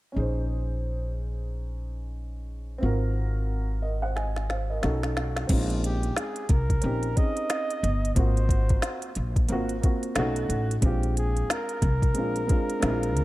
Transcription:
0.12 2.77 C#4 medium
0.12 2.78 D#4 medium
0.16 2.79 A#1 medium
0.16 2.79 G#4 medium
0.16 2.80 C5 medium
2.78 4.76 C4 medium
2.78 4.77 F4 medium
2.83 4.78 G#1 medium
2.83 4.79 F#4 medium
2.83 3.81 A#4 medium
3.82 4.02 A#4 soft
3.82 4.01 D#5 medium
4.02 4.15 C5 medium
4.02 4.15 F#5 medium
4.16 4.48 D#5 medium
4.16 4.47 G#5 medium
4.16 snare medium
4.36 snare soft
4.49 4.69 C5 soft
4.49 4.68 F5 medium
4.49 snare medium
4.70 5.02 A#4 soft
4.70 5.01 D#5 medium
4.81 5.46 B1 medium
4.81 5.47 C#4 medium
4.81 5.49 D#4 medium
4.81 5.50 F#4 medium
4.81 snare medium
4.85 5.50 A4 medium
5.03 snare medium
5.17 snare medium
5.36 snare medium
5.47 6.08 A#1 loud
5.47 6.41 G#3 medium
5.47 6.39 C4 medium
5.47 6.40 C#4 medium
5.47 6.41 D#4 medium
5.47 kick medium
5.47 closed hi-hat medium
5.47 crash medium
5.52 5.81 F4 medium
5.70 closed hi-hat soft
5.84 6.20 G4 medium
5.84 closed hi-hat medium
6.03 closed hi-hat soft
6.17 6.53 G#4 medium
6.17 snare loud
6.17 closed hi-hat medium
6.36 closed hi-hat soft
6.49 6.79 C2 medium
6.49 7.19 A#4 medium
6.49 kick medium
6.49 closed hi-hat medium
6.70 kick medium
6.70 closed hi-hat soft
6.81 7.13 A#1 medium
6.81 7.06 C4 medium
6.81 7.07 C#4 medium
6.81 7.08 D#4 medium
6.81 7.08 G4 medium
6.81 closed hi-hat medium
7.03 closed hi-hat soft
7.15 7.82 C4 medium
7.15 7.83 C#4 medium
7.15 7.84 D#4 medium
7.15 7.84 G#4 medium
7.15 8.16 D#5 medium
7.15 kick medium
7.15 closed hi-hat medium
7.37 closed hi-hat medium
7.50 snare medium
7.50 closed hi-hat medium
7.70 closed hi-hat soft
7.83 8.12 G1 medium
7.83 closed hi-hat medium
8.05 closed hi-hat medium
8.15 8.75 G#1 loud
8.15 9.07 A#3 medium
8.15 9.07 C4 medium
8.15 9.08 F4 medium
8.15 9.09 F#4 medium
8.15 9.12 C5 medium
8.15 kick loud
8.15 closed hi-hat medium
8.37 closed hi-hat soft
8.49 kick medium
8.49 closed hi-hat medium
8.69 kick medium
8.69 closed hi-hat soft
8.82 snare loud
8.82 closed hi-hat medium
9.02 closed hi-hat medium
9.15 9.45 A#1 medium
9.15 closed hi-hat medium
9.36 kick medium
9.36 closed hi-hat soft
9.48 9.79 G#1 medium
9.48 9.73 A#3 medium
9.48 9.74 C4 medium
9.48 9.75 F4 medium
9.48 9.75 F#4 medium
9.48 closed hi-hat medium
9.69 closed hi-hat soft
9.81 10.15 A#3 medium
9.81 10.16 C4 medium
9.81 10.16 F4 medium
9.81 kick medium
9.81 closed hi-hat medium
9.85 10.17 F#4 medium
10.03 closed hi-hat medium
10.15 10.45 B1 medium
10.15 10.71 A3 loud
10.15 10.72 C#4 medium
10.15 10.73 D#4 medium
10.15 10.73 F#4 loud
10.15 snare loud
10.15 closed hi-hat medium
10.36 closed hi-hat medium
10.49 10.79 A1 medium
10.49 closed hi-hat medium
10.71 closed hi-hat medium
10.81 11.41 A#1 medium
10.81 11.73 G#3 medium
10.81 11.74 C4 medium
10.81 11.74 D4 medium
10.81 11.75 F4 medium
10.81 kick medium
10.81 closed hi-hat medium
10.85 11.15 G4 medium
11.03 closed hi-hat soft
11.17 11.53 G#4 medium
11.17 closed hi-hat medium
11.37 closed hi-hat soft
11.50 13.24 A#4 loud
11.50 snare loud
11.50 closed hi-hat medium
11.69 closed hi-hat soft
11.82 12.16 C2 medium
11.82 kick medium
11.82 closed hi-hat medium
12.02 kick medium
12.02 closed hi-hat soft
12.14 12.45 A#1 medium
12.14 12.39 G#3 medium
12.14 12.40 C4 medium
12.14 12.41 D4 medium
12.14 12.41 F4 medium
12.14 closed hi-hat medium
12.36 closed hi-hat soft
12.47 12.78 G#3 medium
12.47 12.79 C4 medium
12.47 12.80 D4 medium
12.47 12.83 F4 medium
12.47 kick medium
12.47 closed hi-hat medium
12.70 closed hi-hat medium
12.80 13.16 A#1 medium
12.80 13.24 G#3 medium
12.80 13.24 C4 medium
12.80 13.24 D4 medium
12.80 12.91 E4 medium
12.80 snare loud
12.80 closed hi-hat medium
12.90 13.24 F4 loud
13.03 closed hi-hat medium
13.16 13.24 D2 medium
13.16 closed hi-hat medium

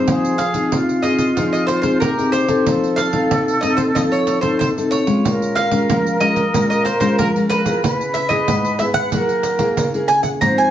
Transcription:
0.00 0.33 C4 medium
0.00 0.34 D#4 medium
0.00 0.34 G#4 medium
0.00 0.41 C5 medium
0.07 0.69 F3 medium
0.07 0.73 G#4 medium
0.07 pandeiro medium
0.24 pandeiro soft
0.38 1.06 F5 medium
0.38 pandeiro medium
0.54 0.98 C4 soft
0.54 0.99 D#4 medium
0.54 0.99 G#4 medium
0.54 pandeiro medium
0.71 1.33 C3 medium
0.71 2.03 F4 medium
0.71 pandeiro medium
0.89 pandeiro soft
1.02 1.23 C4 soft
1.02 1.23 D#4 soft
1.02 1.23 G#4 medium
1.02 1.51 D#5 medium
1.02 pandeiro medium
1.18 pandeiro medium
1.36 1.98 F3 medium
1.36 1.80 C4 medium
1.36 1.80 D#4 soft
1.36 1.81 G#4 medium
1.36 pandeiro medium
1.53 1.66 D#5 medium
1.53 pandeiro soft
1.67 1.80 C5 medium
1.67 pandeiro medium
1.82 2.12 C4 medium
1.82 2.12 D#4 medium
1.82 2.12 G#4 medium
1.82 1.99 C5 medium
1.82 pandeiro medium
2.00 2.63 C3 medium
2.00 2.68 G4 medium
2.00 2.31 A#4 medium
2.00 pandeiro medium
2.18 2.45 C4 medium
2.18 2.45 D#4 medium
2.18 2.46 G#4 medium
2.18 pandeiro soft
2.32 3.00 C5 medium
2.32 pandeiro medium
2.48 3.09 C4 medium
2.48 3.09 D#4 medium
2.48 3.09 A4 medium
2.48 pandeiro medium
2.66 3.28 F3 medium
2.66 4.98 A4 loud
2.66 pandeiro medium
2.84 pandeiro soft
2.96 3.64 F5 medium
2.96 pandeiro medium
3.13 3.57 C4 medium
3.13 3.57 D#4 medium
3.13 3.58 A4 medium
3.13 pandeiro medium
3.31 3.93 C3 medium
3.31 pandeiro medium
3.48 pandeiro soft
3.61 3.90 C4 medium
3.61 3.90 D#4 medium
3.61 3.90 A4 medium
3.61 3.76 D#5 medium
3.61 pandeiro medium
3.77 3.82 C5 medium
3.77 pandeiro medium
3.95 4.57 F3 medium
3.95 4.39 C4 medium
3.95 4.39 D#4 soft
3.95 4.39 A4 medium
3.95 4.00 D#5 medium
3.95 pandeiro medium
4.12 4.41 C#5 medium
4.12 pandeiro soft
4.27 pandeiro medium
4.41 4.71 C4 medium
4.41 4.71 D#4 medium
4.41 4.71 A4 medium
4.41 4.58 C5 medium
4.41 pandeiro medium
4.59 5.22 C3 medium
4.59 4.68 C5 medium
4.59 pandeiro medium
4.77 5.04 C4 medium
4.77 5.05 D#4 medium
4.77 5.05 A4 medium
4.77 pandeiro soft
4.91 5.59 C#5 medium
4.91 pandeiro medium
5.07 5.68 G#3 medium
5.07 5.68 C#4 medium
5.07 5.68 F4 medium
5.07 pandeiro medium
5.25 5.87 A#2 medium
5.25 7.80 A#4 loud
5.25 pandeiro medium
5.42 pandeiro soft
5.55 6.23 F5 medium
5.55 pandeiro medium
5.71 6.16 G#3 medium
5.71 6.16 C#4 medium
5.71 6.16 F4 medium
5.71 pandeiro medium
5.89 6.51 F3 medium
5.89 pandeiro medium
6.06 pandeiro soft
6.20 6.41 G#3 medium
6.20 6.41 C#4 soft
6.20 6.41 F4 medium
6.20 6.69 D#5 medium
6.20 pandeiro medium
6.36 pandeiro soft
6.54 7.16 A#2 medium
6.54 6.85 G#3 medium
6.54 6.85 C#4 soft
6.54 6.85 F4 medium
6.54 pandeiro medium
6.70 6.84 D#5 medium
6.70 pandeiro soft
6.85 6.99 C5 medium
6.85 pandeiro medium
7.00 7.29 G#3 medium
7.00 7.29 C#4 medium
7.00 7.29 F4 medium
7.00 7.17 C5 medium
7.00 pandeiro medium
7.18 7.81 F3 medium
7.18 7.27 A#4 medium
7.18 pandeiro medium
7.36 7.63 G#3 medium
7.36 7.63 C#4 medium
7.36 7.63 F4 medium
7.36 pandeiro soft
7.49 8.11 B4 medium
7.49 pandeiro medium
7.66 8.26 B3 medium
7.66 8.26 E4 medium
7.66 8.26 G#4 medium
7.66 pandeiro medium
7.84 8.45 C#3 medium
7.84 9.09 B4 loud
7.84 pandeiro medium
8.01 pandeiro soft
8.14 8.32 E5 medium
8.14 pandeiro medium
8.29 8.74 B3 medium
8.29 8.75 E4 medium
8.29 8.75 G#4 medium
8.29 8.80 D#5 medium
8.29 pandeiro medium
8.48 9.10 G#2 medium
8.48 pandeiro medium
8.65 pandeiro soft
8.79 9.08 B3 medium
8.79 9.08 E4 medium
8.79 9.08 G#4 medium
8.79 8.84 E5 medium
8.79 pandeiro medium
8.94 10.08 F#5 loud
8.94 pandeiro medium
9.12 9.74 F#3 medium
9.12 9.56 A#3 medium
9.12 9.56 E4 soft
9.12 9.57 G#4 medium
9.12 10.05 A#4 medium
9.12 pandeiro medium
9.29 pandeiro soft
9.43 pandeiro medium
9.59 9.87 A#3 medium
9.59 9.88 E4 medium
9.59 9.88 G#4 medium
9.59 pandeiro medium
9.77 10.39 C#3 medium
9.77 pandeiro medium
9.94 10.37 A#3 medium
9.94 10.37 E4 medium
9.94 10.37 G#4 medium
9.94 pandeiro soft
10.08 10.23 G#5 medium
10.08 pandeiro medium
10.23 10.28 F#5 medium
10.23 pandeiro medium
10.41 10.71 G#2 medium
10.41 10.71 F3 medium
10.41 10.71 C4 medium
10.41 10.71 D#4 medium
10.41 10.71 C5 loud
10.41 10.58 A#5 loud
10.41 pandeiro medium
10.58 10.71 G#5 medium
10.58 pandeiro soft

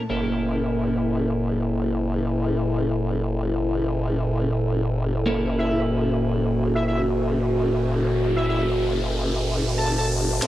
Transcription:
0.10 10.40 F#1 medium
0.10 10.38 A#2 medium
0.10 5.23 A#3 medium
0.10 5.23 C#4 medium
0.10 5.22 E4 medium
0.10 5.23 E4 medium
0.10 10.38 A4 medium
0.10 5.23 A4 medium
5.26 10.39 A#3 medium
5.26 10.39 C#4 medium
5.26 10.39 E4 medium
5.26 10.38 F#4 medium
5.26 10.39 A4 medium
5.26 riser medium
5.59 5.80 E5 medium
6.75 6.83 E5 medium
6.88 7.00 E5 medium
8.36 8.44 E5 medium
8.49 8.62 E5 medium
9.78 9.91 A5 medium
9.98 10.06 A5 medium
10.42 10.47 F#1 medium
10.42 10.47 A#2 medium
10.42 10.47 A3 medium
10.42 10.47 E4 medium
10.42 snare soft
10.42 closed hi-hat medium
10.42 riser medium

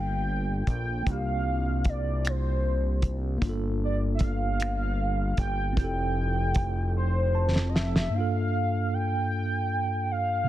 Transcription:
0.00 0.64 G1 loud
0.00 1.00 A#3 medium
0.00 1.02 D4 medium
0.00 1.04 F4 medium
0.00 1.06 A4 medium
0.00 0.69 G5 loud
0.67 1.03 A#1 medium
0.67 1.12 G5 medium
0.67 kick medium
0.67 closed hi-hat soft
1.02 3.36 A#3 medium
1.02 3.38 D4 medium
1.07 3.38 C2 medium
1.07 3.40 F4 medium
1.07 kick loud
1.07 closed hi-hat medium
1.11 3.41 G4 medium
1.11 1.91 F5 loud
1.84 kick medium
1.84 closed hi-hat medium
1.89 2.31 D5 medium
2.25 finger snap loud
2.25 closed hi-hat medium
2.29 3.15 C5 medium
3.02 kick medium
3.02 closed hi-hat medium
3.38 5.71 A#3 medium
3.38 5.73 D4 medium
3.38 kick loud
3.38 closed hi-hat medium
3.42 5.34 G1 loud
3.42 5.75 F4 medium
3.49 5.77 A4 medium
3.84 3.98 D5 medium
4.15 4.25 E5 medium
4.19 kick medium
4.19 closed hi-hat medium
4.24 5.39 F5 loud
4.60 finger snap loud
4.60 closed hi-hat medium
5.37 5.79 G1 medium
5.37 5.75 G5 loud
5.37 kick medium
5.37 closed hi-hat medium
5.73 8.06 C4 medium
5.77 8.09 F1 loud
5.77 8.08 E4 medium
5.77 8.10 G4 medium
5.77 6.91 G5 loud
5.77 kick loud
5.77 closed hi-hat medium
5.84 8.12 A4 medium
6.54 kick medium
6.54 closed hi-hat medium
6.97 7.70 C5 loud
7.35 7.71 A5 medium
7.56 snare medium
7.69 7.78 D#5 medium
7.75 8.11 E5 medium
7.75 8.17 E5 medium
7.75 snare medium
7.96 snare medium
8.10 10.42 G2 medium
8.10 10.44 A#3 medium
8.15 10.45 D4 medium
8.15 10.46 F4 medium
8.15 8.95 F5 loud
8.20 10.48 A4 medium
8.94 10.13 G5 loud
10.11 10.49 F5 loud
10.44 10.49 C3 medium

